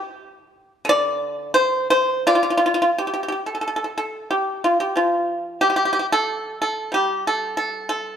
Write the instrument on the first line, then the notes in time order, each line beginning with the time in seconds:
pipa
0.85 D3
0.89 D5
1.54 C5
1.90 C5
2.27 F4 D5
2.35 F4
2.43 F4
2.50 F4
2.57 F4
2.66 F4
2.74 F4
2.82 F4
2.98 G4
3.07 G4
3.14 G4
3.23 G4
3.28 G4
3.46 A4
3.55 A4
3.61 A4
3.68 A4
3.76 A4
3.84 A4
3.98 A4
4.31 G4
4.64 F4
4.80 G4
4.96 F3 F4
5.61 G4
5.70 G4
5.76 G4
5.85 G4
5.93 G4
5.99 G4
6.12 A4
6.62 A4
6.92 G3 G4
7.27 A4
7.57 A4
7.89 A4